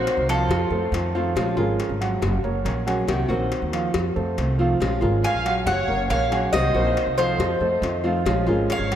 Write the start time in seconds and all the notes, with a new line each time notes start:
Already playing: D#3 A#3 C4 F#4 A#4 C5
0.07 cowbell
0.17 C2
0.28 F3 F4 A4 F5, cowbell
0.49 F2, muted nylon-string guitar stroke, cowbell
0.70 F2 A3 A4 C5
0.92 F2 D#3 A3 C4 F4, cowbell
1.14 D#3 F3 A3 C4 F4 F5
1.36 A#1 F3 G#3 C#4 F4 F5, cowbell
1.57 G#1 G#3 C#4 F4 G#4 A#4
1.80 cowbell
1.89 G#1
2.00 F#3 F#5, cowbell
2.22 F#1, muted nylon-string guitar stroke, cowbell
2.44 F#1 A#3 A#4 C#5
2.64 A#1 F#3 A#3 C#4 G#4 A#4 C#5, cowbell
2.86 F#3 A#3 C#4 F#4 G#4 F#5, cowbell
3.07 C2 C3 D#3 A#3 C4 F#4, cowbell
3.28 A#1 D#3 A#3 C4 F#4 A#4 C5
3.52 cowbell
3.62 D#2
3.72 F3 F5, cowbell
3.94 F2, muted nylon-string guitar stroke, cowbell
4.15 F2 A3 A4 C5
4.37 C2 D#3 A3 C4 F4, cowbell
4.58 D#3 F3 A3 C4 F4 F5
4.80 A#1 F3 G#3 C#4 F4 F5, cowbell
5.01 G#1 G#3 C#4 F4 G#4 A#4
5.24 F5 G#5, cowbell
5.34 A#1
5.45 F#3 F#5, cowbell
5.66 F#1 C#5 F#5, muted nylon-string guitar stroke, cowbell
5.88 F#1 A#3 A#4 C#5
6.08 A#1 F#3 A#3 C#4 G#4 A#4 C#5 F5, cowbell
6.32 F#3 A#3 C#4 F#4 G#4 F#5, cowbell
6.51 C2 C3 D#3 A#3 C4 F#4 C5 D#5, cowbell
6.74 A#1 D#3 A#3 C4 F#4 A#4 C5
6.97 cowbell
7.07 C2
7.16 F3 A4 C5 F5, cowbell
7.39 F2, muted nylon-string guitar stroke, cowbell
7.60 F2 A3 A4 C5
7.82 F2 D#3 A3 C4 F4, cowbell
8.04 D#3 F3 A3 C4 F4 F5
8.25 A#1 F3 G#3 C#4 F4 F5, cowbell
8.47 G#1 G#3 C#4 F4 G#4 A#4
8.69 C#5 F5, cowbell
8.79 G#1
8.91 F#3 F#5, cowbell